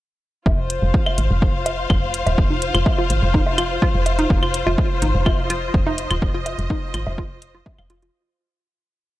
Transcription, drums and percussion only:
0.46 kick, low woodblock
0.70 closed hi-hat
0.94 kick
1.06 claves, low woodblock
1.18 closed hi-hat
1.42 kick
1.66 closed hi-hat, low woodblock
1.90 kick, claves
2.14 closed hi-hat
2.26 closed hi-hat, low woodblock
2.38 kick
2.62 closed hi-hat
2.75 closed hi-hat, claves
2.86 kick, low woodblock
3.10 closed hi-hat
3.34 kick
3.47 low woodblock
3.58 closed hi-hat, claves
3.82 kick
4.06 closed hi-hat, low woodblock
4.19 closed hi-hat
4.30 kick
4.43 claves
4.54 closed hi-hat
4.67 low woodblock
4.78 kick
5.02 closed hi-hat
5.26 kick, claves, low woodblock
5.50 closed hi-hat
5.74 kick
5.87 low woodblock
5.98 closed hi-hat
6.11 closed hi-hat, claves
6.22 kick
6.46 closed hi-hat, low woodblock
6.59 closed hi-hat
6.70 kick
6.94 closed hi-hat, claves
7.07 low woodblock
7.18 kick
7.42 closed hi-hat
7.66 kick, low woodblock
7.79 claves
7.90 closed hi-hat
8.02 closed hi-hat

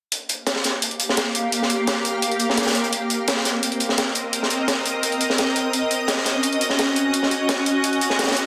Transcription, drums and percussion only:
0.12 closed hi-hat
0.29 closed hi-hat
0.47 snare, closed hi-hat
0.56 snare
0.64 snare, closed hi-hat
0.82 closed hi-hat
0.91 closed hi-hat
1.00 closed hi-hat
1.09 snare
1.17 snare, closed hi-hat
1.35 closed hi-hat
1.52 closed hi-hat
1.62 snare
1.70 closed hi-hat
1.87 snare, closed hi-hat
2.05 closed hi-hat
2.22 closed hi-hat
2.32 closed hi-hat
2.39 closed hi-hat
2.50 snare
2.57 snare, closed hi-hat
2.62 snare, closed hi-hat
2.67 snare, closed hi-hat
2.71 snare, closed hi-hat
2.75 closed hi-hat
2.84 closed hi-hat
2.93 closed hi-hat
3.10 closed hi-hat
3.28 snare, closed hi-hat
3.37 snare
3.45 snare, closed hi-hat
3.63 closed hi-hat
3.72 closed hi-hat
3.80 closed hi-hat
3.89 snare
3.98 snare, closed hi-hat
4.15 closed hi-hat
4.33 closed hi-hat
4.43 snare
4.50 closed hi-hat
4.68 snare, closed hi-hat
4.86 closed hi-hat
5.03 closed hi-hat
5.12 closed hi-hat
5.21 closed hi-hat
5.30 snare
5.38 snare, closed hi-hat
5.56 closed hi-hat
5.73 closed hi-hat
5.91 closed hi-hat
6.08 snare, closed hi-hat
6.17 snare
6.25 snare, closed hi-hat
6.43 closed hi-hat
6.53 closed hi-hat
6.61 closed hi-hat
6.70 snare
6.79 snare, closed hi-hat
6.96 closed hi-hat
7.14 closed hi-hat
7.23 snare
7.31 closed hi-hat
7.49 snare, closed hi-hat
7.66 closed hi-hat
7.84 closed hi-hat
7.93 closed hi-hat
8.01 closed hi-hat
8.10 snare
8.19 snare, closed hi-hat
8.23 snare, closed hi-hat
8.28 snare, closed hi-hat
8.31 snare, closed hi-hat
8.37 closed hi-hat

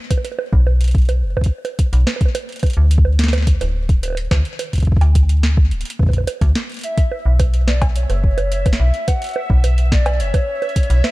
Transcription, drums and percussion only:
0.11 kick, closed hi-hat, high bongo
0.18 high bongo
0.25 closed hi-hat, high bongo
0.32 high bongo
0.39 high bongo
0.53 kick
0.67 high bongo
0.81 closed hi-hat
0.84 closed hi-hat
0.88 closed hi-hat
0.91 kick, closed hi-hat
0.95 closed hi-hat
0.98 closed hi-hat
1.02 closed hi-hat
1.05 closed hi-hat
1.09 closed hi-hat, high bongo
1.37 kick, high bongo
1.41 kick, closed hi-hat
1.46 kick
1.65 closed hi-hat, high bongo
1.79 kick, closed hi-hat
1.93 closed hi-hat
2.07 snare, high bongo
2.16 high bongo
2.21 kick, closed hi-hat
2.25 high bongo
2.35 closed hi-hat, high bongo
2.49 closed hi-hat
2.52 closed hi-hat
2.56 closed hi-hat
2.59 closed hi-hat
2.63 kick, closed hi-hat, high bongo
2.66 closed hi-hat
2.70 closed hi-hat
2.73 closed hi-hat
2.91 closed hi-hat
2.98 kick
3.05 high bongo
3.19 snare, closed hi-hat
3.24 snare
3.28 snare
3.33 snare, closed hi-hat, high bongo
3.38 snare
3.42 snare
3.47 kick, closed hi-hat
3.61 closed hi-hat, high bongo
3.89 kick, closed hi-hat
4.03 closed hi-hat, high bongo
4.05 high bongo
4.08 high bongo
4.10 high bongo
4.12 high bongo
4.15 closed hi-hat, high bongo
4.31 kick, snare, high bongo
4.45 closed hi-hat
4.59 closed hi-hat, high bongo
4.73 kick, closed hi-hat
4.76 kick, closed hi-hat
4.78 closed hi-hat
4.80 kick, closed hi-hat
4.83 closed hi-hat
4.85 kick, closed hi-hat
4.92 kick
4.97 kick
5.01 closed hi-hat, high bongo
5.15 kick, closed hi-hat
5.29 closed hi-hat
5.43 snare
5.57 kick
5.71 closed hi-hat
5.81 closed hi-hat
5.85 closed hi-hat
5.90 closed hi-hat
5.99 kick, high bongo
6.03 kick
6.06 kick, high bongo
6.10 kick
6.13 kick, closed hi-hat
6.17 kick, high bongo
6.20 kick
6.24 kick, closed hi-hat, high bongo
6.41 kick, closed hi-hat
6.55 snare
6.69 closed hi-hat
6.72 closed hi-hat
6.74 closed hi-hat
6.77 closed hi-hat
6.79 closed hi-hat
6.81 closed hi-hat
6.83 closed hi-hat
6.97 kick, closed hi-hat
7.11 high bongo
7.40 kick, closed hi-hat, high bongo
7.54 closed hi-hat
7.68 snare, high bongo
7.82 kick, closed hi-hat, cowbell
7.96 closed hi-hat
8.10 closed hi-hat, high bongo
8.24 kick
8.38 closed hi-hat, high bongo
8.52 closed hi-hat
8.66 kick, closed hi-hat, high bongo
8.73 snare
8.94 closed hi-hat
9.08 kick, closed hi-hat, high bongo
9.22 closed hi-hat
9.24 closed hi-hat
9.26 closed hi-hat
9.29 closed hi-hat
9.31 closed hi-hat
9.33 closed hi-hat, high bongo
9.50 kick
9.64 closed hi-hat, high bongo
9.78 closed hi-hat
9.92 kick, snare
10.06 closed hi-hat, cowbell, high bongo
10.20 closed hi-hat
10.34 kick, closed hi-hat, high bongo
10.62 closed hi-hat, high bongo
10.69 closed hi-hat
10.76 kick, closed hi-hat
10.83 closed hi-hat
10.90 closed hi-hat
11.04 snare, high bongo

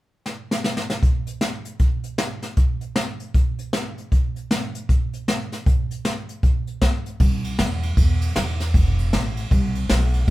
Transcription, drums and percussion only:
0.26 snare
0.51 snare
0.64 snare
0.77 snare
0.90 snare
1.03 kick, closed hi-hat
1.27 closed hi-hat
1.41 snare, closed hi-hat
1.65 closed hi-hat
1.79 kick, closed hi-hat
2.04 closed hi-hat
2.18 snare, closed hi-hat
2.42 snare, closed hi-hat
2.57 kick, closed hi-hat
2.81 closed hi-hat
2.96 snare, closed hi-hat
3.20 closed hi-hat
3.34 kick, closed hi-hat
3.59 closed hi-hat
3.73 snare, closed hi-hat
3.98 closed hi-hat
4.12 kick, closed hi-hat
4.36 closed hi-hat
4.51 snare, closed hi-hat
4.75 closed hi-hat
4.89 kick, closed hi-hat
5.13 closed hi-hat
5.28 snare, closed hi-hat
5.52 snare, closed hi-hat
5.66 kick, closed hi-hat
5.91 closed hi-hat
6.05 snare, closed hi-hat
6.29 closed hi-hat
6.43 kick, closed hi-hat
6.67 closed hi-hat
6.82 kick, snare, closed hi-hat
7.06 closed hi-hat
7.20 kick, ride
7.44 ride
7.59 snare, ride
7.83 ride
7.97 kick, ride
8.21 ride
8.36 snare, ride
8.60 snare, ride
8.74 kick, ride
8.98 ride
9.13 snare, ride
9.37 ride
9.51 kick, ride
9.75 ride
9.89 snare, ride
10.13 ride

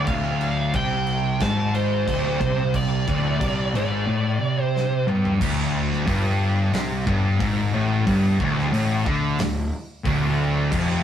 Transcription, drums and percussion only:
0.07 kick, crash
0.41 crash
0.74 kick, crash
1.07 crash
1.40 kick, snare, crash
1.74 crash
2.08 kick, crash
2.41 kick, snare, crash
2.74 kick, crash
3.08 kick, crash
3.41 kick, crash
3.75 crash
4.76 snare
5.08 mid tom
5.25 floor tom
5.41 kick, crash
5.92 snare
6.08 kick, open hi-hat
6.74 snare, open hi-hat
7.07 kick
7.40 kick, open hi-hat
8.07 kick, open hi-hat
8.40 kick
8.59 snare
8.74 open hi-hat
9.06 kick
9.39 snare, open hi-hat
10.05 kick, open hi-hat
10.72 kick, crash

